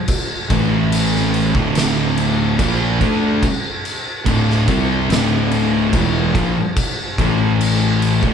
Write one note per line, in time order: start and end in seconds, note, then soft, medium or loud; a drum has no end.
0.08 kick loud
0.08 crash medium
0.50 1.50 A1 loud
0.50 1.53 A2 medium
0.50 1.54 E3 loud
0.50 1.53 A3 loud
0.50 kick loud
0.50 crash medium
0.92 crash loud
1.16 snare soft
1.34 crash medium
1.55 2.55 D1 loud
1.55 2.58 D2 loud
1.55 2.58 A2 loud
1.55 2.58 D3 loud
1.55 kick loud
1.75 snare loud
1.75 crash medium
2.17 crash medium
2.59 2.98 A#1 loud
2.59 3.00 A#2 medium
2.59 3.00 F3 loud
2.59 3.00 A#3 loud
2.59 kick loud
2.59 crash medium
3.01 3.40 D2 loud
3.01 3.42 D3 loud
3.01 3.42 A3 loud
3.01 3.42 D4 loud
3.01 kick medium
3.01 crash medium
3.43 kick loud
3.43 crash medium
3.85 crash medium
4.26 4.65 D1 medium
4.26 4.67 D2 medium
4.26 4.67 A2 medium
4.26 4.67 D3 loud
4.26 kick loud
4.26 crash medium
4.50 snare soft
4.68 5.07 C2 medium
4.68 5.08 C3 loud
4.68 5.09 G3 medium
4.68 5.09 C4 loud
4.68 kick loud
4.68 crash medium
5.10 5.89 D1 loud
5.10 5.92 D2 medium
5.10 5.92 A2 loud
5.10 5.93 D3 loud
5.10 snare loud
5.10 crash medium
5.51 crash medium
5.93 6.32 E1 loud
5.93 6.34 E2 medium
5.93 6.34 B2 loud
5.93 6.35 E3 loud
5.93 kick loud
5.93 crash medium
6.35 6.54 A#1 loud
6.35 6.55 A#2 loud
6.35 6.55 F3 loud
6.35 kick loud
6.35 crash medium
6.76 kick loud
6.76 crash medium
7.18 8.19 A1 loud
7.18 8.22 A2 loud
7.18 8.23 E3 loud
7.18 8.23 A3 loud
7.18 kick loud
7.18 crash medium
7.61 crash loud
8.02 crash medium
8.23 8.34 D1 medium
8.23 8.34 D2 loud
8.23 8.34 A2 loud
8.23 kick loud